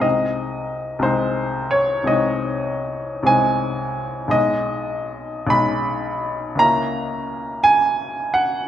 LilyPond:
<<
  \new Staff \with { instrumentName = "Grand piano" } { \time 12/8 \key aes \major \tempo 4. = 56 ees''4. c''4 des''8 ees''4. aes''4. | \key gis \minor dis''4. b''4. ais''4. gis''4 fis''8 | }
  \new Staff \with { instrumentName = "Grand piano" } { \time 12/8 \key aes \major <c, aes c' ees'>4. <c, aes c' ees'>4. <c, aes c' ees'>4. <c, aes c' ees'>4. | \key gis \minor <b,, gis dis'>4. <b,, gis dis'>4. <cis, ais cis' e'>2. | }
>>